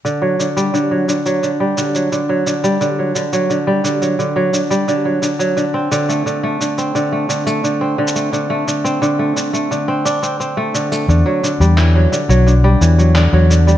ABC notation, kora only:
X:1
M:4/4
L:1/16
Q:1/4=87
K:Dmix
V:1 name="Kora" clef=bass
D, F, D, G, D, F, D, F, D, G, D, F, D, F, D, G, | D, F, D, F, D, G, D, F, D, F, D, G, D, F, D, F, | D, C D, A, D, A, D, C D, A, D, A, D, C D, A, | D, A, D, C D, A, D, A, D, C D C C A, D, A, |
D, F, D, G, E, F, D, F, D, G, E, F, D, F, D, G, |]